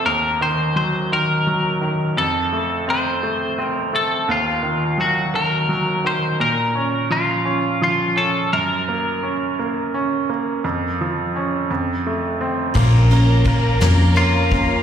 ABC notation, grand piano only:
X:1
M:6/8
L:1/8
Q:3/8=57
K:Bbm
V:1 name="Grand piano"
E,, E, G, E, G, E, | F,, =A, C A, C A, | E,, E, G, E, G, E, | B,, D F, D F, D |
G,, B, D B, D B, | F,, F, D F,, =A, C | B, B, B, B, B, B, |]